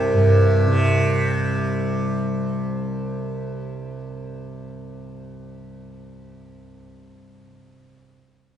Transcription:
Already playing: C2 G2 C3 C4
0.13 G2
0.67 C3

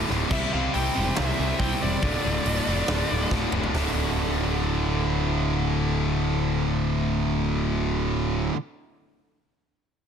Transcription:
Already playing: D2 A2 D3 A3 F4
0.09 D1 D2 A2 D3, snare
0.29 C2 C3 G3 C4 E4 G4 C5 E5, kick, crash
0.52 C2 C3 G3 C4 F5
0.73 C2 C3 G3 C4 G5, open hi-hat
0.94 E1 C3 G3 C4 E4 G4 C5
1.16 C2 C3 G3 C4 F5, snare, open hi-hat
1.26 E5
1.38 C2 C3 G3 C4
1.59 C2 C3 G3 C4 G5, kick, open hi-hat
1.82 E1 C3 G3 C4 D5
2.03 D1 D2 A2 D3 A3 F4, kick, open hi-hat
2.24 D1 D2 A2 D3
2.45 D1 D2 A2 D3, open hi-hat
2.67 F1 D2 A2 D3 A3 F4
2.88 D1 D2 A2 D3, snare, open hi-hat
3.10 D1 D2 A2 D3
3.31 D1 D2 A2 D3, kick, snare
3.52 D1 D2 A2 D3, mid tom
3.64 floor tom
3.73 D1 D2 A2 D3, snare, floor tom, open hi-hat
3.77 A3 F#4

